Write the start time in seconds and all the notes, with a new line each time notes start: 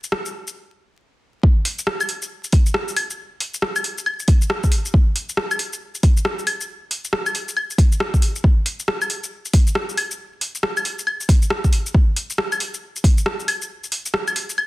0.04 shaker
0.12 cross-stick
0.26 shaker
0.47 shaker
1.43 kick
1.65 open hi-hat
1.79 shaker
1.87 cross-stick
2.01 claves, shaker
2.09 open hi-hat
2.22 shaker
2.44 shaker
2.52 kick, open hi-hat
2.66 shaker
2.74 cross-stick
2.88 shaker
2.96 open hi-hat, claves
3.10 shaker
3.40 open hi-hat
3.54 shaker
3.62 cross-stick
3.76 claves, shaker
3.84 open hi-hat
3.98 shaker
4.06 claves
4.20 shaker
4.28 kick, open hi-hat
4.42 shaker
4.50 cross-stick
4.64 kick, shaker
4.72 open hi-hat
4.85 shaker
4.94 kick
5.16 open hi-hat
5.29 shaker
5.37 cross-stick
5.51 claves, shaker
5.59 open hi-hat
5.73 shaker
5.95 shaker
6.03 kick, open hi-hat
6.17 shaker
6.25 cross-stick
6.39 shaker
6.47 open hi-hat, claves
6.61 shaker
6.91 open hi-hat
7.05 shaker
7.13 cross-stick
7.26 claves, shaker
7.35 open hi-hat
7.49 shaker
7.57 claves
7.70 shaker
7.78 kick, open hi-hat
7.92 shaker
8.00 cross-stick
8.14 kick, shaker
8.22 open hi-hat
8.36 shaker
8.44 kick
8.66 open hi-hat
8.80 shaker
8.88 cross-stick
9.02 claves, shaker
9.10 open hi-hat
9.24 shaker
9.45 shaker
9.53 kick, open hi-hat
9.67 shaker
9.75 cross-stick
9.89 shaker
9.97 open hi-hat, claves
10.11 shaker
10.41 open hi-hat
10.55 shaker
10.63 cross-stick
10.77 claves, shaker
10.85 open hi-hat
10.99 shaker
11.07 claves
11.21 shaker
11.29 kick, open hi-hat
11.42 shaker
11.50 cross-stick
11.64 kick, shaker
11.73 open hi-hat
11.86 shaker
11.94 kick
12.16 open hi-hat
12.30 shaker
12.38 cross-stick
12.52 claves, shaker
12.60 open hi-hat
12.74 shaker
12.96 shaker
13.04 kick, open hi-hat
13.18 shaker
13.26 cross-stick
13.40 shaker
13.48 open hi-hat, claves
13.62 shaker
13.84 shaker
13.92 open hi-hat
14.06 shaker
14.14 cross-stick
14.28 claves, shaker
14.36 open hi-hat
14.50 shaker
14.58 claves